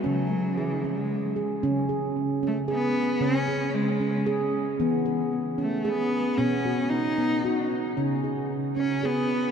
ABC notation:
X:1
M:3/4
L:1/8
Q:1/4=114
K:C#m
V:1 name="Handpan"
C2 G C2 G | C G2 C G2 | C G2 C G2 | B, G2 C G2 |
B, F2 B, F2 | C G2 C G2 |]
V:2 name="Handpan" clef=bass
C,6 | C,6 | C,6 | E,6 |
B,,6 | C,6 |]
V:3 name="Cello"
F,2 E, G,2 z | z3 A, B,2 | C2 G,3 z | z3 A, B,2 |
C2 D3 z | z3 C B,2 |]